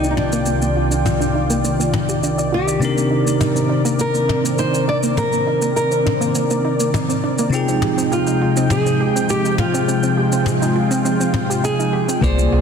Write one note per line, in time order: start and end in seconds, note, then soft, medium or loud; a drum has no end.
0.00 2.78 C2 medium
0.00 2.77 C3 medium
0.00 7.48 D#3 medium
0.00 2.77 C4 medium
0.00 2.78 D4 medium
0.00 0.11 D4 medium
0.00 2.78 F4 medium
0.00 2.79 G4 medium
0.00 2.80 A#4 medium
0.00 7.48 D5 medium
0.00 2.78 G5 medium
0.00 shaker soft
0.11 0.17 D#4 soft
0.17 1.31 D4 medium
0.17 0.31 D#4 medium
0.17 mid tom medium
0.32 0.46 A#3 medium
0.32 shaker medium
0.46 0.55 A#3 medium
0.46 shaker medium
0.62 0.75 A#3 medium
0.62 shaker soft
0.76 0.90 F4 medium
0.91 1.04 D4 medium
0.91 shaker medium
1.05 1.19 F4 medium
1.05 mid tom medium
1.05 shaker medium
1.21 1.28 D4 medium
1.21 shaker soft
1.35 1.48 D#4 medium
1.50 1.63 A#3 loud
1.50 shaker medium
1.64 1.72 A#3 medium
1.64 shaker medium
1.79 1.92 A#3 medium
1.79 shaker medium
1.94 2.07 F4 medium
1.94 mid tom medium
2.09 2.22 G4 medium
2.09 shaker medium
2.23 2.37 D4 medium
2.23 shaker medium
2.38 2.46 D5 medium
2.38 shaker soft
2.52 2.60 F4 medium
2.52 4.00 G4 medium
2.67 2.80 D5 medium
2.67 shaker medium
2.79 7.48 C3 medium
2.79 2.90 A#3 medium
2.79 7.48 C4 medium
2.79 7.49 C4 medium
2.79 7.49 D4 medium
2.79 7.50 D#4 medium
2.79 7.49 A#4 medium
2.79 shaker medium
2.85 7.50 A#4 medium
2.97 3.09 A#3 medium
2.97 shaker soft
3.11 3.25 D#4 medium
3.26 3.39 A#3 medium
3.26 shaker medium
3.40 3.54 D#4 medium
3.40 mid tom medium
3.40 shaker medium
3.55 3.63 C4 medium
3.55 shaker soft
3.69 3.83 D4 medium
3.85 3.98 A#3 loud
3.85 shaker medium
3.99 4.07 A#3 medium
3.99 4.55 A#4 medium
3.99 shaker medium
4.14 4.27 A#3 medium
4.14 shaker soft
4.29 4.43 D#4 medium
4.29 mid tom medium
4.44 4.57 A#3 medium
4.44 shaker medium
4.58 4.72 D#4 medium
4.58 4.86 C5 medium
4.58 shaker medium
4.74 4.81 C4 medium
4.74 shaker soft
4.88 5.01 D4 medium
4.88 4.96 D5 medium
5.03 5.16 A#3 loud
5.03 shaker medium
5.17 5.26 A#3 medium
5.17 5.75 A#4 medium
5.17 mid tom medium
5.17 shaker medium
5.32 5.45 A#3 medium
5.32 shaker soft
5.47 5.61 D#4 medium
5.62 5.75 A#3 medium
5.62 shaker medium
5.76 5.90 D#4 medium
5.76 6.90 A#4 medium
5.76 shaker medium
5.91 5.99 C4 medium
5.91 shaker soft
6.06 6.19 D4 medium
6.06 mid tom medium
6.21 6.34 A#3 loud
6.21 shaker medium
6.35 6.43 A#3 medium
6.35 shaker medium
6.50 6.63 A#3 medium
6.50 shaker soft
6.65 6.79 D#4 medium
6.80 6.92 A#3 medium
6.80 shaker medium
6.94 7.07 D#4 medium
6.94 mid tom medium
6.94 shaker medium
7.09 7.17 C4 medium
7.09 shaker soft
7.24 7.37 D4 medium
7.38 7.52 A#3 loud
7.38 shaker medium
7.50 12.18 C3 medium
7.50 12.19 C3 medium
7.50 12.19 F3 medium
7.50 12.19 G#3 medium
7.50 12.19 C4 medium
7.50 7.61 C4 medium
7.50 12.19 D#4 medium
7.50 9.86 D#4 medium
7.50 12.20 F4 medium
7.50 12.19 G5 loud
7.50 shaker medium
7.54 12.21 G#4 medium
7.54 12.20 G5 medium
7.68 7.81 C4 medium
7.68 shaker soft
7.82 7.97 G4 medium
7.82 mid tom medium
7.97 8.10 C4 medium
7.97 shaker medium
8.12 8.71 F4 medium
8.12 8.25 G4 medium
8.12 shaker medium
8.27 8.34 D#4 medium
8.27 shaker soft
8.41 8.55 F4 medium
8.57 8.70 C4 loud
8.57 shaker medium
8.70 8.79 C4 medium
8.70 9.26 G#4 medium
8.70 mid tom medium
8.70 shaker medium
8.86 8.98 C4 medium
8.86 shaker soft
9.00 9.14 G4 medium
9.16 9.28 C4 medium
9.16 shaker medium
9.29 9.43 G4 medium
9.29 9.57 G4 medium
9.29 shaker medium
9.45 9.52 D#4 medium
9.45 shaker soft
9.58 9.72 F4 medium
9.58 10.14 F4 medium
9.58 mid tom medium
9.74 9.87 C4 medium
9.74 shaker medium
9.87 9.96 C4 medium
9.87 12.20 F4 medium
9.87 shaker medium
10.03 10.16 C4 medium
10.03 shaker soft
10.17 10.32 G4 medium
10.32 10.45 C4 medium
10.32 shaker medium
10.46 10.60 G4 medium
10.46 mid tom medium
10.46 shaker medium
10.62 10.69 D#4 medium
10.62 shaker soft
10.76 10.89 F4 medium
10.91 11.04 C4 loud
10.91 shaker medium
11.05 11.13 C4 medium
11.05 shaker medium
11.20 11.33 C4 medium
11.20 shaker soft
11.34 11.48 C4 medium
11.34 mid tom medium
11.50 11.63 G4 medium
11.50 shaker medium
11.64 11.78 D#4 medium
11.64 12.19 G#4 medium
11.64 shaker medium
11.79 11.92 D#4 medium
11.79 shaker soft
11.93 12.07 G4 medium
12.08 12.21 C4 medium
12.08 shaker medium
12.21 12.48 C2 loud
12.21 12.61 C3 medium
12.21 12.61 D3 medium
12.21 12.61 A#3 medium
12.21 12.31 A#3 medium
12.21 12.61 A#3 medium
12.21 12.61 C4 medium
12.21 12.61 F4 medium
12.21 12.61 G#4 medium
12.21 12.61 C5 loud
12.21 12.61 D5 medium
12.21 kick loud
12.21 shaker medium
12.38 12.51 A#3 medium
12.38 shaker soft
12.52 12.61 C2 medium
12.52 12.61 F4 medium